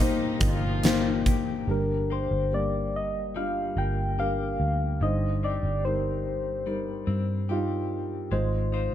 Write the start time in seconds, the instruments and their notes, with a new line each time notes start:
Already playing: fingered electric bass C2, felt piano G2, string section C3 G3 A#3 D#4, clean electric guitar C3, soft synth lead D#5
0.00 felt piano A#3 D#4 C5, clean electric guitar A#3 D#4 G4
0.40 fingered electric bass G1, french horn section F3 F4, kick, closed hi-hat
0.83 felt piano A#3 D#4 C5, clean electric guitar A#3 D#4 G4, snare, closed hi-hat
1.26 clean electric guitar G4, kick, closed hi-hat
1.67 fingered electric bass G1, felt piano G2 D3 G3 D4 A#4, clean electric guitar G2, soft synth lead A#4
2.10 clean electric guitar A#3 G4, soft synth lead C5
2.31 fingered electric bass G1
2.52 felt piano G3 A#3 A#4, soft synth lead D5
2.96 soft synth lead D#5
3.35 felt piano G3 D4 F4, clean electric guitar G3, soft synth lead F5
3.77 fingered electric bass G1, clean electric guitar A#3, soft synth lead G5
4.18 felt piano G3 D4 A#4, clean electric guitar G4, soft synth lead F5
4.60 fingered electric bass D2
5.01 fingered electric bass G1, clean electric guitar G2, felt piano G2 G3 D#4 C5, soft synth lead D#5
5.43 clean electric guitar C4 D#4 G4, soft synth lead D5
5.63 fingered electric bass G1
5.85 felt piano G3 D#4 A#4, soft synth lead C5
6.67 felt piano G3 D#4 A#4, clean electric guitar G3
7.07 fingered electric bass G2, clean electric guitar C4
7.49 felt piano G3 D#4 F4, clean electric guitar G4
8.31 fingered electric bass G#1, felt piano G#2 G#3 F4 D#5, clean electric guitar G#3, soft synth lead C5
8.72 clean electric guitar D#4 F4 C5